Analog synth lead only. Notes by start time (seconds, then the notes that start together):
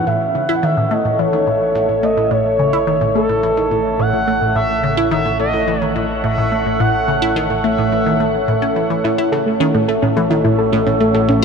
0.07 E5
0.56 F#5
0.63 E5
0.91 D#5
1.19 C#5
2.04 D#5
2.31 C#5
3.16 A4
4.00 F#5
4.56 E5
5.12 E5
5.40 D#5
6.24 E5
6.80 F#5
7.64 E5